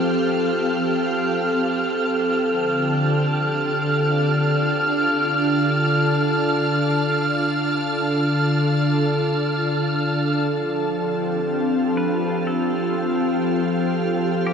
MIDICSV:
0, 0, Header, 1, 4, 480
1, 0, Start_track
1, 0, Key_signature, -1, "major"
1, 0, Tempo, 500000
1, 13953, End_track
2, 0, Start_track
2, 0, Title_t, "Synth texture"
2, 0, Program_c, 0, 99
2, 0, Note_on_c, 0, 89, 84
2, 10077, Note_off_c, 0, 89, 0
2, 10099, Note_on_c, 0, 93, 82
2, 13953, Note_off_c, 0, 93, 0
2, 13953, End_track
3, 0, Start_track
3, 0, Title_t, "Pedal steel guitar"
3, 0, Program_c, 1, 26
3, 11494, Note_on_c, 1, 71, 75
3, 11967, Note_off_c, 1, 71, 0
3, 11971, Note_on_c, 1, 69, 84
3, 13380, Note_off_c, 1, 69, 0
3, 13888, Note_on_c, 1, 67, 83
3, 13953, Note_off_c, 1, 67, 0
3, 13953, End_track
4, 0, Start_track
4, 0, Title_t, "Ambient pad"
4, 0, Program_c, 2, 92
4, 0, Note_on_c, 2, 53, 53
4, 0, Note_on_c, 2, 60, 66
4, 0, Note_on_c, 2, 67, 79
4, 0, Note_on_c, 2, 69, 53
4, 0, Note_on_c, 2, 77, 80
4, 2367, Note_on_c, 2, 50, 65
4, 2387, Note_off_c, 2, 53, 0
4, 2524, Note_on_c, 2, 62, 61
4, 3049, Note_on_c, 2, 81, 66
4, 3174, Note_on_c, 2, 65, 60
4, 3591, Note_off_c, 2, 77, 0
4, 3709, Note_off_c, 2, 60, 0
4, 5333, Note_off_c, 2, 67, 0
4, 10057, Note_off_c, 2, 50, 0
4, 10078, Note_on_c, 2, 53, 72
4, 10317, Note_on_c, 2, 67, 62
4, 10549, Note_on_c, 2, 60, 57
4, 10833, Note_on_c, 2, 77, 90
4, 11753, Note_off_c, 2, 62, 0
4, 13111, Note_off_c, 2, 81, 0
4, 13135, Note_off_c, 2, 65, 0
4, 13953, Note_off_c, 2, 53, 0
4, 13953, Note_off_c, 2, 60, 0
4, 13953, Note_off_c, 2, 67, 0
4, 13953, Note_off_c, 2, 69, 0
4, 13953, Note_off_c, 2, 77, 0
4, 13953, End_track
0, 0, End_of_file